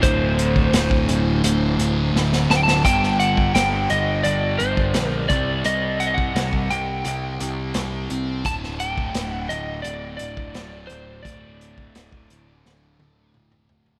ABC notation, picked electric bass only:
X:1
M:4/4
L:1/8
Q:1/4=86
K:none
V:1 name="Picked electric bass" clef=bass
D,,,2 D,,, D,,, D,,, D,,, D,,, D,,, | G,,,2 G,,, G,,, G,,, G,,, _B,,, C,, | C,,2 C,, C,, C,, C,, C,, C,, | D,,,2 D,,, D,,, D,,, D,,, D,,, D,,, |
D,,,2 D,,, D,,, D,,, D,,, D,,, D,,, |]